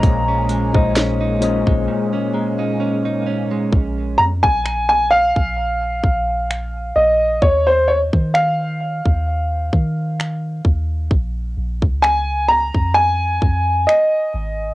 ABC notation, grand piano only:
X:1
M:4/4
L:1/16
Q:"Swing 16ths" 1/4=65
K:Bbm
V:1 name="Grand piano"
b12 z4 | z2 b a2 a f8 e2 | d c d2 f8- f2 z2 | z4 a2 b2 a4 e4 |]